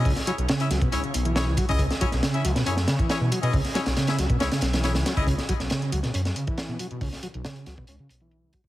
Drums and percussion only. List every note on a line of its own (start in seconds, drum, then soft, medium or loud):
0.05 kick loud
0.05 closed hi-hat soft
0.05 open hi-hat medium
0.16 snare soft
0.16 closed hi-hat soft
0.27 closed hi-hat medium
0.38 closed hi-hat soft
0.48 snare loud
0.48 closed hi-hat medium
0.48 closed hi-hat soft
0.60 closed hi-hat soft
0.71 snare soft
0.71 closed hi-hat medium
0.82 kick loud
0.82 closed hi-hat soft
0.92 closed hi-hat medium
0.92 closed hi-hat soft
1.04 closed hi-hat soft
1.14 closed hi-hat medium
1.25 closed hi-hat soft
1.36 snare loud
1.36 closed hi-hat soft
1.36 closed hi-hat medium
1.57 kick medium
1.57 closed hi-hat medium
1.69 kick medium
1.69 closed hi-hat soft
1.79 kick loud
1.79 closed hi-hat medium
1.79 closed hi-hat soft
1.91 snare medium
1.91 closed hi-hat soft
2.01 kick loud
2.01 closed hi-hat medium
2.12 snare soft
2.12 closed hi-hat soft
2.23 snare loud
2.23 closed hi-hat soft
2.23 closed hi-hat medium
2.34 closed hi-hat soft
2.45 closed hi-hat medium
2.56 snare soft
2.56 closed hi-hat soft
2.66 closed hi-hat medium
2.66 closed hi-hat soft
2.77 snare medium
2.77 closed hi-hat soft
2.88 snare loud
2.88 closed hi-hat medium
2.99 kick medium
2.99 closed hi-hat soft
3.10 snare loud
3.10 closed hi-hat medium
3.10 closed hi-hat soft
3.32 closed hi-hat medium
3.43 closed hi-hat soft
3.53 kick loud
3.53 closed hi-hat soft
3.53 open hi-hat medium
3.65 snare soft
3.65 closed hi-hat soft
3.75 snare loud
3.75 closed hi-hat medium
3.86 snare loud
3.86 closed hi-hat medium
3.86 closed hi-hat soft
3.97 snare loud
3.97 closed hi-hat medium
3.97 closed hi-hat soft
4.07 snare loud
4.07 closed hi-hat medium
4.07 closed hi-hat soft
4.19 snare soft
4.19 closed hi-hat medium
4.30 kick loud
4.30 closed hi-hat soft
4.40 snare loud
4.40 closed hi-hat soft
4.40 closed hi-hat medium
4.52 snare loud
4.52 closed hi-hat medium
4.52 closed hi-hat soft
4.61 snare loud
4.61 closed hi-hat medium
4.73 snare loud
4.73 closed hi-hat medium
4.73 closed hi-hat soft
4.83 snare medium
4.83 closed hi-hat medium
4.83 closed hi-hat soft
4.95 snare loud
4.95 closed hi-hat medium
4.95 closed hi-hat soft
5.06 snare loud
5.06 closed hi-hat medium
5.17 kick medium
5.17 closed hi-hat soft
5.27 kick loud
5.27 closed hi-hat soft
5.27 closed hi-hat loud
5.38 snare soft
5.38 closed hi-hat soft
5.49 kick medium
5.49 closed hi-hat medium
5.60 snare soft
5.60 closed hi-hat soft
5.70 snare loud
5.70 closed hi-hat medium
5.70 closed hi-hat soft
5.82 closed hi-hat soft
5.92 closed hi-hat medium
6.03 snare soft
6.03 closed hi-hat soft
6.14 closed hi-hat soft
6.14 closed hi-hat medium
6.25 snare medium
6.25 closed hi-hat soft
6.36 closed hi-hat medium
6.47 kick loud
6.47 closed hi-hat soft
6.58 snare loud
6.58 closed hi-hat medium
6.58 closed hi-hat soft
6.79 closed hi-hat medium
6.91 closed hi-hat soft
7.01 kick loud
7.01 closed hi-hat soft
7.01 open hi-hat medium
7.12 snare soft
7.12 closed hi-hat soft
7.23 closed hi-hat medium
7.34 closed hi-hat soft
7.45 snare loud
7.45 closed hi-hat medium
7.45 closed hi-hat soft
7.56 closed hi-hat soft
7.66 snare soft
7.66 closed hi-hat medium
7.77 kick loud
7.77 closed hi-hat soft
7.87 closed hi-hat medium
7.87 closed hi-hat soft
7.99 closed hi-hat soft
8.09 closed hi-hat medium
8.21 closed hi-hat soft
8.31 closed hi-hat soft
8.53 kick medium
8.53 closed hi-hat medium
8.64 kick medium